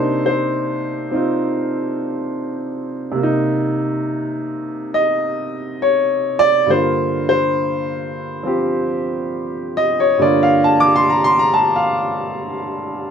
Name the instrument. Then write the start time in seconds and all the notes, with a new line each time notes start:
upright piano
Already playing: C3 A#3 D4 D#4 C5
0.26 C5
1.11 C4 D#4 F4
3.12 C3 A#3
3.23 D#4
4.94 D#5
5.82 C#5
6.39 D5
6.66 G2 D3 A#3
6.70 F4 C5
7.29 C5
8.43 F3 C4 G4
9.77 D#5
10.00 C#5
10.18 G2 D3 A#3 D5
10.23 F4
10.43 F5
10.64 A5
10.80 D6
10.96 C6
11.10 A#5
11.24 C6
11.39 A#5
11.54 A5
11.76 F5